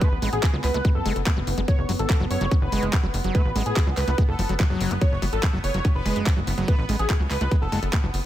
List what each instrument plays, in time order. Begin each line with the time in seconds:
Already playing: synth texture B3
0.01 acid bass A3, analog synth lead B4, kick, closed hi-hat
0.12 analog synth bass A1
0.22 analog synth bass A1, acid bass G#3, open hi-hat
0.33 analog synth bass A1, analog synth lead G#4, closed hi-hat
0.43 acid bass F#4, kick, clap, closed hi-hat
0.54 analog synth bass C#2, acid bass F#3
0.64 analog synth bass C#2, analog synth lead B4, clap, open hi-hat
0.74 analog synth bass C#2, acid bass A3, closed hi-hat
0.85 acid bass G#3, kick, closed hi-hat
0.95 analog synth bass F#1, analog synth lead A4
1.06 analog synth bass F#1, acid bass G#3, open hi-hat
1.16 analog synth bass F#1, closed hi-hat
1.26 acid bass A3, kick, clap, closed hi-hat
1.37 analog synth bass F#1, acid bass F#3
1.47 analog synth bass F#1, open hi-hat
1.58 analog synth bass F#1, acid bass G#3, closed hi-hat
1.68 acid bass F#3, analog synth lead C#5, kick, closed hi-hat
1.79 analog synth bass F#1
1.89 analog synth bass F#1, acid bass F#3, open hi-hat
1.99 analog synth bass G#1, analog synth lead A4, closed hi-hat
2.10 acid bass F3, kick, clap, closed hi-hat
2.20 analog synth bass F#1, acid bass F#3
2.31 analog synth bass F#1, analog synth lead C#5, open hi-hat
2.41 analog synth bass F#1, acid bass F#3, closed hi-hat
2.51 acid bass C#4, kick, closed hi-hat
2.62 analog synth bass F#1, analog synth lead B4
2.72 analog synth bass F#1, acid bass G#3, open hi-hat
2.83 analog synth bass F#1, closed hi-hat
2.93 acid bass F3, kick, clap, closed hi-hat
3.04 analog synth bass F#1, acid bass F#3
3.14 analog synth bass F#1, open hi-hat
3.24 analog synth bass F#1, acid bass F#3, closed hi-hat
3.35 acid bass A3, analog synth lead B4, kick, closed hi-hat
3.45 analog synth bass A1
3.56 analog synth bass A1, acid bass G#3, open hi-hat
3.66 analog synth bass A1, analog synth lead G#4, closed hi-hat
3.76 acid bass F#4, kick, clap, closed hi-hat
3.87 analog synth bass C#2, acid bass F#3
3.97 analog synth bass C#2, analog synth lead B4, clap, open hi-hat
4.08 analog synth bass C#2, acid bass A3, closed hi-hat
4.18 acid bass G#3, kick, closed hi-hat
4.29 analog synth bass F#1, analog synth lead A4
4.39 analog synth bass F#1, acid bass F3, open hi-hat
4.49 analog synth bass F#1, acid bass F#3, closed hi-hat
4.60 acid bass F3, kick, clap, closed hi-hat
4.70 analog synth bass F#1, acid bass F#3
4.81 analog synth bass F#1, open hi-hat
4.91 analog synth bass F#1, acid bass C#4, closed hi-hat
5.01 acid bass F#3, analog synth lead C#5, kick, closed hi-hat
5.12 analog synth bass F#1
5.22 analog synth bass F#1, acid bass F#3, open hi-hat
5.33 analog synth bass G#1, analog synth lead A4, closed hi-hat
5.43 acid bass F3, kick, clap, closed hi-hat
5.53 analog synth bass F#1, acid bass F#3
5.64 analog synth bass F#1, analog synth lead C#5, open hi-hat
5.74 analog synth bass F#1, acid bass F#3, closed hi-hat
5.85 acid bass C#4, kick, closed hi-hat
5.95 analog synth bass F#1, analog synth lead B4
6.06 analog synth bass F#1, acid bass G#3, open hi-hat
6.16 analog synth bass F#1, closed hi-hat
6.26 acid bass F3, kick, clap, closed hi-hat
6.37 analog synth bass F#1, acid bass F#3
6.47 analog synth bass F#1, open hi-hat
6.58 analog synth bass F#1, acid bass F#3, closed hi-hat
6.68 acid bass A3, analog synth lead B4, kick, closed hi-hat
6.79 analog synth bass A1
6.89 analog synth bass A1, acid bass G#3, open hi-hat
6.99 analog synth bass A1, analog synth lead G#4, closed hi-hat
7.10 acid bass F#4, kick, clap, closed hi-hat
7.20 analog synth bass C#2, acid bass F#3
7.31 analog synth bass C#2, analog synth lead B4, clap, open hi-hat
7.41 analog synth bass C#2, acid bass A3, closed hi-hat
7.51 acid bass G#3, kick, closed hi-hat
7.62 analog synth bass F#1, analog synth lead A4
7.72 analog synth bass F#1, acid bass G#3, open hi-hat
7.83 analog synth bass F#1, closed hi-hat
7.93 acid bass A3, kick, clap, closed hi-hat
8.03 analog synth bass F#1, acid bass F#3
8.14 analog synth bass F#1, open hi-hat